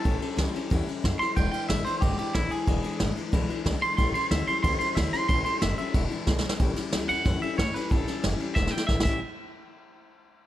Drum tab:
CC |------------------------|------------------------|------------------------|------------------------|
RD |x--x--x--x--x--x--x--x--|x--x--x--x--x--x--x--x--|x--x--x--x--x--x--x--x--|x--x--x--x--x--x--x--x--|
SD |------o-----------o--o--|------o-----------o-----|------o-----------o-----|------o-----------o--o--|
BD |o-----------o-----o-----|o-----------o-----o-----|o-----------o-----o-----|o-----------o-----o-----|

CC |------------------------|------------------------|---------------------x--|------------------------|
RD |x--x--x--x--x--x--------|x--x--x--x--x--x--x--x--|x--x--x--x--------------|------------------------|
SD |------o-----------o-o-o-|---o--o-----o-----o--o--|---o--o-----o-o-o-o-o---|------------------------|
BD |o-----------o-----o-----|o-----------o-----o-----|o-----------o-----o--o--|------------------------|